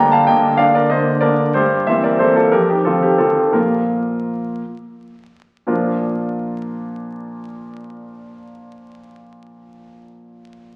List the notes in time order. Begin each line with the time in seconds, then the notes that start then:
Already playing: G2 D3 A#3 D4 D5 G5 A#5
0.11 F5 A5
0.27 D3 A#3 D4 D#5 G5
0.57 D3 A#3 D4 D5 F5
0.75 A#4 D5
0.90 D3 A#3 D4 C5 D#5
1.21 D3 A#3 D4 A#4 D5
1.54 G2 G4 C5
1.87 E3 A#3 C4 C5 E5
2.04 A#4 D5
2.19 E3 A#3 C4 A4 C5
2.36 F4 A4
2.52 F2 G4 A#4
2.70 D#4 G4
2.85 D#3 F3 C4 F4 A4
3.02 D#4 G4
3.18 D#3 F3 C4 F4 A4
3.53 A#2 F3 A#3 F4 A#4
5.67 A#2 F3 D4 F4 A#4 D5